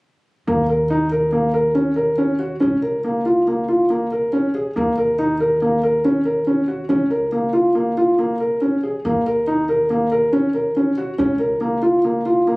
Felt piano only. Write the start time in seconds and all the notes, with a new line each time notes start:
0.47 A#3
0.69 A#4
0.90 D#4
1.12 A#4
1.32 A#3
1.54 A#4
1.75 C#4
1.96 A#4
2.18 C#4
2.39 F#4
2.60 C#4
2.82 A#4
3.04 A#3
3.26 F4
3.47 A#3
3.68 F4
3.90 A#3
4.12 A#4
4.33 C#4
4.54 G#4
4.76 A#3
4.98 A#4
5.19 D#4
5.40 A#4
5.62 A#3
5.83 A#4
6.05 C#4
6.25 A#4
6.47 C#4
6.68 F#4
6.89 C#4
7.10 A#4
7.32 A#3
7.53 F4
7.75 A#3
7.97 F4
8.19 A#3
8.40 A#4
8.61 C#4
8.83 G#4
9.05 A#3
9.27 A#4
9.47 D#4
9.69 A#4
9.90 A#3
10.12 A#4
10.33 C#4
10.54 A#4
10.76 C#4
10.98 F#4
11.18 C#4
11.39 A#4
11.61 A#3
11.82 F4
12.05 A#3
12.26 F4
12.47 A#3